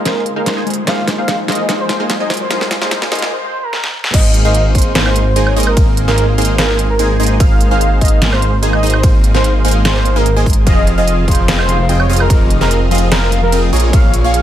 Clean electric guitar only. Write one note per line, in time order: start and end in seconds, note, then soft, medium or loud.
0.00 0.63 G#3 medium
0.00 0.64 F4 medium
0.00 0.65 A#4 medium
0.00 0.65 D#5 medium
0.66 0.84 G#3 medium
0.66 0.85 F4 medium
0.66 0.85 A#4 medium
0.66 0.85 C5 medium
0.85 1.45 G#3 medium
0.85 1.46 F4 medium
0.85 1.46 A#4 medium
0.85 1.47 C5 loud
1.46 2.27 G#3 medium
1.46 2.27 F4 medium
1.46 2.28 A#4 medium
1.51 2.29 D#5 loud
2.29 2.47 G#3 medium
2.29 2.48 F4 medium
2.29 2.48 A#4 medium
2.29 2.49 C5 medium
2.49 3.08 G#3 loud
2.49 3.09 F4 medium
2.49 3.10 A#4 medium
2.49 3.10 C5 loud
3.11 3.32 G#3 medium
3.11 3.32 F4 medium
3.11 3.32 A#4 medium
3.11 3.33 D#5 loud
10.65 11.25 F3 loud
10.65 11.25 F4 medium
10.65 11.26 G#4 medium
10.69 11.27 D#5 loud
11.27 11.66 F3 medium
11.27 11.67 F4 medium
11.27 11.67 G#4 medium
11.27 11.67 F5 medium
11.68 11.76 F3 loud
11.68 11.77 F4 medium
11.68 11.77 G#4 medium
11.68 11.77 F5 loud
11.79 12.07 F3 medium
11.79 12.07 F4 medium
11.79 12.08 G#4 medium
11.79 12.08 F5 medium
12.09 12.27 F3 medium
12.09 12.28 F4 medium
12.09 12.28 G#4 medium
12.09 12.28 D#5 medium
12.28 12.88 F3 medium
12.28 12.89 F4 medium
12.28 12.89 G#4 medium
12.28 12.90 D#5 loud
12.90 13.30 F3 medium
12.90 13.30 F4 medium
12.90 13.30 G#4 medium
12.90 13.31 F5 loud
13.31 13.40 F3 loud
13.31 13.40 F4 medium
13.31 13.40 G#4 medium
13.31 13.41 F5 loud
13.42 13.70 F3 medium
13.42 13.70 F4 medium
13.42 13.71 G#4 medium
13.42 13.71 F5 medium
13.72 13.90 A#3 medium
13.72 13.91 F4 medium
13.72 13.91 G#4 medium
13.72 13.91 C#5 loud
13.91 14.42 A#3 loud
13.91 14.42 F4 medium
13.91 14.42 G#4 medium
13.91 14.42 C#5 loud